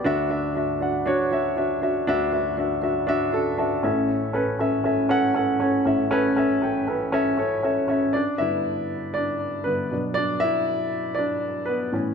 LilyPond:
<<
  \new Staff \with { instrumentName = "Upright piano" } { \time 4/4 \key d \major \tempo 4 = 119 << { r1 | r2. a''8 e''8 | r1 | r1 |
<d' d''>8 <e' e''>4. <d' d''>4 b'8. r16 | <d' d''>8 <e' e''>4. <d' d''>4 <b b'>8. r16 | } \\ { <d' fis' e''>8 <d' fis' e''>8 <d' fis' e''>8 <d' fis' fis''>8 <d' fis' cis''>8 <d' fis' e''>8 <d' fis' e''>8 <d' fis' e''>8 | <d' fis' e''>8 <d' fis' e''>8 <d' fis' e''>8 <d' fis' e''>8 <d' fis' e''>8 <d' fis' a'>8 <d' fis' e''>8 <cis' a'>8~ | <cis' a'>8 <cis' a' b'>8 <cis' a' e''>8 <cis' a' e''>8 <cis' a' fis''>8 <cis' a' fis''>8 <cis' a' cis''>8 <cis' a' e''>8 | <cis' a' b'>8 <cis' a' e''>8 <cis' a' g''>8 <cis' a' b'>8 <cis' a' e''>8 <cis' a' cis''>8 <cis' a' e''>8 <cis' a' e''>8 |
r1 | r1 | } >> }
  \new Staff \with { instrumentName = "Upright piano" } { \clef bass \time 4/4 \key d \major <d, d>1 | <d, d>2.~ <d, d>8 <a,, a,>8~ | <a,, a,>2.~ <a,, a,>8 <a,, a,>8~ | <a,, a,>2.~ <a,, a,>8 r8 |
r8 <g, d b>8 r2 <g, d b>8 <b, fis d'>8 | r2. r8 <a, e cis'>8 | }
>>